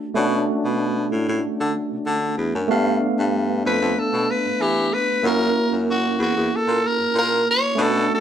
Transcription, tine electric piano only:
0.00 0.12 A3 medium
0.00 0.12 C#4 medium
0.00 0.12 D4 medium
0.00 0.13 F#4 medium
0.14 2.65 A3 medium
0.14 2.66 C#4 medium
0.14 2.66 D4 medium
0.14 2.67 F#4 medium
2.68 5.19 A3 medium
2.68 5.19 B3 medium
2.68 5.20 D4 medium
2.68 5.20 F5 medium
5.23 7.73 A#3 medium
5.23 7.73 C#4 medium
5.23 7.74 E4 medium
5.23 7.75 F#4 medium
7.75 8.20 A3 medium
7.75 8.20 C#4 medium
7.75 8.20 D4 medium
7.75 8.20 F#4 medium

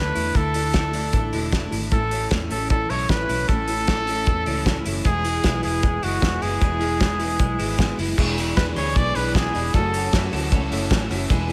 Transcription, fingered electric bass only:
0.00 0.12 D2 medium
0.16 0.32 E2 medium
0.35 1.10 D2 loud
1.14 1.30 A1 loud
1.33 1.66 E1 medium
1.72 1.89 G#1 medium
1.92 2.25 A1 loud
2.31 2.48 E2 medium
2.50 2.84 A1 medium
2.90 3.07 B1 medium
3.09 3.26 A1 medium
3.29 3.46 B1 medium
3.49 4.23 A1 loud
4.27 4.44 E2 medium
4.47 4.80 C#2 medium
4.86 5.03 F#1 medium
5.05 5.39 E1 loud
5.44 5.61 B1 loud
5.64 5.97 E1 medium
6.03 6.20 F#1 medium
6.22 6.39 E1 medium
6.42 6.59 F#1 medium
6.62 7.36 E1 loud
7.40 7.56 B1 loud
7.60 7.93 G#1 medium
7.98 8.15 F#1 medium
8.18 8.51 E1 loud
8.57 8.74 E2 medium
8.77 8.93 D2 medium
8.96 9.13 B1 medium
9.16 9.49 B1 medium
9.55 9.71 E1 medium
9.74 10.07 F#1 loud
10.13 10.30 F#2 medium
10.33 10.49 D2 medium
10.52 10.69 C#2 loud
10.71 10.88 F#1 medium
10.91 11.07 A1 loud
11.10 11.27 F#1 medium
11.30 11.53 E1 loud

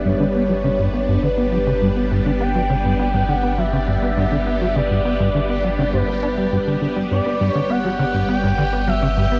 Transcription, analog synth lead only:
0.05 1.24 C#5 loud
1.23 2.11 B4 medium
2.40 3.30 G5 loud
3.29 3.57 F#5 loud
3.58 4.77 E5 loud
4.75 5.95 D5 loud
5.93 6.82 B4 medium
7.11 7.50 D5 loud
7.50 7.72 C#5 loud
7.70 8.28 F#5 loud
8.29 8.89 G5 loud
8.88 9.40 E5 loud

